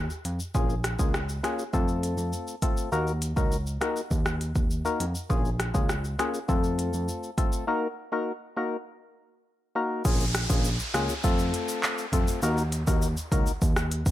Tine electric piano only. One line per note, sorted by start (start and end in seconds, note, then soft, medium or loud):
0.25 0.38 F2 medium
0.55 0.95 A#1 loud
0.99 1.39 C#2 medium
1.74 2.13 F2 loud
2.18 2.31 F2 medium
2.92 3.32 D#2 loud
3.37 3.77 C#2 medium
4.11 4.51 D#2 loud
4.56 4.82 D#2 medium
5.00 5.13 F2 medium
5.30 5.70 A#1 loud
5.75 6.14 C#2 medium
6.49 6.89 F2 loud
6.93 7.07 F2 medium
10.05 10.45 A#1 loud
10.50 10.76 A#1 loud
10.94 11.07 C#2 loud
11.24 11.51 F2 loud
12.13 12.26 F2 medium
12.43 12.83 D#2 loud
12.88 13.14 D#2 loud
13.32 13.45 C#2 medium
13.62 14.02 D#2 loud
14.06 14.11 F2 medium